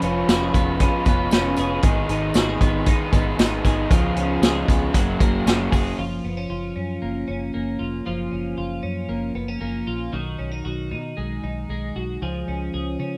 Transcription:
Already playing: clean electric guitar F3 F4
0.02 fingered electric bass F1, clean electric guitar C#4, overdriven electric guitar C#4 F4 B4, closed hi-hat, tambourine
0.27 fingered electric bass F1, overdriven electric guitar F3 G#3 C#4 F4 B4, clean electric guitar F#4, snare, closed hi-hat, tambourine
0.43 clean electric guitar G#4
0.54 fingered electric bass F1, clean electric guitar B3, kick, closed hi-hat, tambourine
0.79 overdriven electric guitar G#3 C#4 F4 B4, clean electric guitar C#4, kick, closed hi-hat
1.05 fingered electric bass F1, clean electric guitar B3, overdriven electric guitar C#4 F4 B4, kick, closed hi-hat, tambourine
1.31 fingered electric bass F1, overdriven electric guitar F3 G#3 C#4 F4 B4, clean electric guitar C#4, snare, closed hi-hat, tambourine
1.56 fingered electric bass F1, overdriven electric guitar C#4 F4 B4, clean electric guitar G#4, closed hi-hat, tambourine
1.82 fingered electric bass G#1, overdriven electric guitar G#2 D#3 G#3 B3 D#4 G#4, clean electric guitar D#3, kick, closed hi-hat, tambourine
2.09 fingered electric bass G#1, overdriven electric guitar G#3 B3 D#4 G#4, clean electric guitar D#4, closed hi-hat, tambourine
2.34 fingered electric bass G#1, overdriven electric guitar G#2 D#3 G#3 B3 D#4 G#4, clean electric guitar F#4, snare, closed hi-hat, tambourine
2.49 clean electric guitar G#4
2.61 fingered electric bass G#1, clean electric guitar B3, kick, closed hi-hat, tambourine
2.86 overdriven electric guitar G#3 B3 D#4 G#4, clean electric guitar D#4, kick, closed hi-hat
3.12 fingered electric bass G#1, overdriven electric guitar G#3 B3 D#4 G#4, clean electric guitar B3, kick, closed hi-hat, tambourine
3.37 fingered electric bass G#1, overdriven electric guitar G#2 D#3 G#3 B3 D#4 G#4, clean electric guitar D#4, snare, closed hi-hat, tambourine
3.64 fingered electric bass G#1, overdriven electric guitar G#3 B3 D#4 G#4, clean electric guitar G#4, kick, closed hi-hat, tambourine
3.90 fingered electric bass C#2, overdriven electric guitar C#3 G#3 B3 F4 G#4, clean electric guitar F3, kick, closed hi-hat, tambourine
4.16 fingered electric bass C#2, overdriven electric guitar B3 F4 G#4, clean electric guitar C#4, closed hi-hat
4.42 fingered electric bass C#2, overdriven electric guitar C#3 G#3 B3 F4 G#4, clean electric guitar G#4, snare, closed hi-hat, tambourine
4.68 fingered electric bass C#2, clean electric guitar B3, kick, closed hi-hat, tambourine
4.93 fingered electric bass F#1, clean electric guitar F#3, overdriven electric guitar A#3 C#4 F#4 G#4, kick, closed hi-hat, tambourine
5.19 fingered electric bass F#1, clean electric guitar A#3, overdriven electric guitar C#4 F#4 G#4, kick, closed hi-hat, tambourine
5.45 fingered electric bass F#1, overdriven electric guitar F#3 A#3 C#4 F#4 G#4, clean electric guitar C#4, snare, closed hi-hat, tambourine
5.71 fingered electric bass F#1, overdriven electric guitar C#4 F#4 G#4, clean electric guitar G#4, kick, open hi-hat, tambourine
5.98 fingered electric bass F#1, clean electric guitar F3 F4
6.24 fingered electric bass F#1, clean electric guitar B3
6.37 clean electric guitar C#4
6.50 fingered electric bass F#1, clean electric guitar F4
6.76 fingered electric bass F#2, clean electric guitar C#4
7.02 fingered electric bass F#1, clean electric guitar A#3
7.28 fingered electric bass F#1, clean electric guitar C#4
7.54 fingered electric bass F#1, clean electric guitar A#3
7.79 fingered electric bass F1, clean electric guitar F4
8.06 fingered electric bass F#1, clean electric guitar F3 F4
8.31 fingered electric bass F#1, clean electric guitar C#4
8.58 fingered electric bass F#1, clean electric guitar F4
8.83 fingered electric bass F#2, clean electric guitar C#4
9.09 fingered electric bass F#1, clean electric guitar A#3
9.35 fingered electric bass F#1, clean electric guitar B3
9.48 clean electric guitar C#4
9.61 fingered electric bass F#1, clean electric guitar A#3
9.87 fingered electric bass A#1, clean electric guitar F4
10.13 fingered electric bass B1, clean electric guitar D#3 F#4
10.39 fingered electric bass B1, clean electric guitar C#4
10.52 clean electric guitar D#4
10.65 fingered electric bass B1, clean electric guitar F#4
10.91 fingered electric bass B2, clean electric guitar D#4
11.17 fingered electric bass B1, clean electric guitar G#3
11.43 fingered electric bass B1, clean electric guitar D#4
11.69 fingered electric bass B1, clean electric guitar G#3
11.96 fingered electric bass B1, clean electric guitar F#4
12.22 fingered electric bass C#2, clean electric guitar F3 G#4
12.48 fingered electric bass C#2, clean electric guitar C#4
12.74 fingered electric bass C#2, clean electric guitar G#4
13.00 fingered electric bass C#3, clean electric guitar C#4

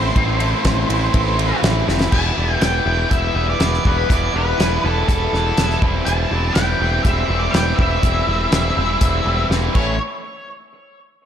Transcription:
Already playing: overdriven electric guitar A2 E3 A3 C4 E4, lead electric guitar C5
0.15 picked electric bass A1, overdriven electric guitar A2 E3 A3 C4 E4, kick, ride
0.40 overdriven electric guitar A2 E3 A3 C4 E4, ride
0.65 picked electric bass A1, overdriven electric guitar A2 E3 A3 C4 E4, kick, snare, ride
0.89 picked electric bass A1, overdriven electric guitar A2 E3 A3 C4 E4, ride
1.13 picked electric bass A1, overdriven electric guitar A2 E3 A3 C4 E4, kick, ride
1.38 overdriven electric guitar A2 E3 A3 C4 E4, ride
1.63 picked electric bass A1, overdriven electric guitar A2 E3 A3 C4 E4, snare, ride
1.87 picked electric bass F1, overdriven electric guitar A2 E3 A3 C4 E4, snare
2.01 snare
2.12 picked electric bass E1, overdriven electric guitar E3 G3 B3 E4, lead electric guitar A5, kick, crash
2.36 picked electric bass E1, overdriven electric guitar E3 G3 B3 E4
2.60 picked electric bass E1, overdriven electric guitar E3 G3 B3 E4, lead electric guitar G5, snare, closed hi-hat
2.85 picked electric bass E1, overdriven electric guitar E3 G3 B3 E4
3.10 picked electric bass E1, overdriven electric guitar E3 G3 B3 E4, lead electric guitar E5, kick, closed hi-hat
3.34 picked electric bass E1, overdriven electric guitar E3 G3 B3 E4
3.50 lead electric guitar D5
3.60 picked electric bass E1, overdriven electric guitar E3 G3 B3 E4, snare, closed hi-hat
3.74 snare
3.84 picked electric bass E1, overdriven electric guitar E3 G3 B3 E4, lead electric guitar B4, kick
4.08 picked electric bass E1, overdriven electric guitar E3 G3 B3 E4, lead electric guitar D5, kick, closed hi-hat
4.34 picked electric bass E1, overdriven electric guitar E3 G3 B3 E4, lead electric guitar B4
4.58 picked electric bass E1, overdriven electric guitar E3 G3 B3 E4, snare, closed hi-hat
4.83 picked electric bass E1, overdriven electric guitar E3 G3 B3 E4, lead electric guitar A4
5.08 picked electric bass E1, overdriven electric guitar E3 G3 B3 E4, lead electric guitar A4, kick, closed hi-hat
5.33 picked electric bass E1, overdriven electric guitar E3 G3 B3 E4, snare
5.58 picked electric bass E1, overdriven electric guitar E3 G3 B3 E4, snare, closed hi-hat
5.70 snare
5.82 picked electric bass E1, overdriven electric guitar E3 G3 C4 E4, kick
6.05 picked electric bass E1, overdriven electric guitar E3 G3 C4 E4, lead electric guitar A5, closed hi-hat
6.31 picked electric bass E1, overdriven electric guitar E3 G3 C4 E4
6.54 picked electric bass E1, overdriven electric guitar E3 G3 C4 E4, lead electric guitar G5, snare, closed hi-hat
6.80 picked electric bass E1, overdriven electric guitar E3 G3 C4 E4
7.03 picked electric bass E1, overdriven electric guitar E3 G3 C4 E4, lead electric guitar E5, kick, closed hi-hat
7.28 picked electric bass E1, overdriven electric guitar E3 G3 C4 E4
7.39 lead electric guitar D5
7.51 picked electric bass E1, overdriven electric guitar E3 G3, lead electric guitar G5, snare, closed hi-hat
7.55 overdriven electric guitar C4 E4
7.76 picked electric bass E1, overdriven electric guitar E3 G3 C4, lead electric guitar E5, kick
7.80 overdriven electric guitar E4
8.02 picked electric bass E1, overdriven electric guitar E3 G3 C4 E4, kick, closed hi-hat
8.27 picked electric bass E1, overdriven electric guitar E3 G3 C4 E4
8.52 picked electric bass E1, overdriven electric guitar E3 G3 C4 E4, snare, closed hi-hat
8.76 picked electric bass E1, overdriven electric guitar E3 G3 C4 E4
9.01 picked electric bass E1, overdriven electric guitar E3 G3 C4 E4, kick, closed hi-hat
9.25 picked electric bass E1, overdriven electric guitar E3 G3 C4 E4
9.50 picked electric bass E1, overdriven electric guitar E3 G3 C4 E4, snare
9.75 picked electric bass A1, overdriven electric guitar A2 E3 A3 C#4 E4, lead electric guitar C#5, kick, crash

